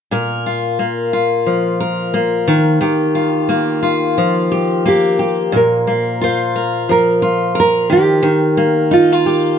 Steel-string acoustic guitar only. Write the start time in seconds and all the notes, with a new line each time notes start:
0.11 A#2 A#4
0.46 F4
0.79 A#3
1.13 F4
1.47 F3
1.80 A#4
2.14 A#3
2.48 D#3
2.81 D#3 G4
3.15 F4
3.49 A#3
3.83 F4
4.18 F3
4.52 G4
4.86 A#3
5.19 G4
5.52 A#2
5.87 A#3
6.21 F4
6.56 A#4
6.89 F3
7.22 F4
7.55 A#4
7.90 D#3
8.23 D#3
8.57 A#3
8.91 D#4
9.12 F4
9.26 G4